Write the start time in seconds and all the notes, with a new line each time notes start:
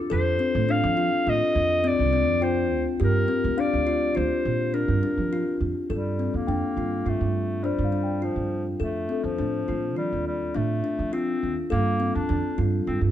Already playing: D6
0.10 F2 A4 C5
0.39 C4
0.55 A2
0.69 D4 F5
0.83 F3
0.97 F4
1.27 A2 F4 D#5
1.55 F2
1.84 C4 D5
1.99 C2
2.13 C4
2.29 F2
2.41 F4 C5 G5
2.72 D2
3.00 G2 G4 A#4
3.28 C4
3.44 D2
3.58 D4 D5 F5
3.73 D2
3.87 F4
4.15 D2 F4 C5
4.45 A#2
4.74 D4 A#4
4.88 G2
5.03 D4
5.17 F3
5.33 F4
5.60 F2
5.90 G2 G3 A4
6.19 C4
6.34 F2 A#3
6.47 F2 D4 G5
6.77 G2 F4
7.06 G2 A3 F4
7.21 G2
7.64 G3 D4 C5
7.78 G2
7.84 F5
7.92 D4
8.03 G5
8.22 F3 F4
8.36 G2
8.80 F2 A3 A4
9.09 C4 A4
9.24 F2 F3
9.38 A2 D4
9.68 A2 F4
9.96 F3 G3 F4
10.13 D#2
10.27 G3
10.54 A2 A3 D4
10.84 D4
10.99 F3
11.13 C4 F4
11.43 D#2
11.70 G2 A#3 A4
12.00 C4
12.15 F2 D4
12.29 F2 D4
12.58 G2 F4
12.87 G2 C4 F4
13.01 G2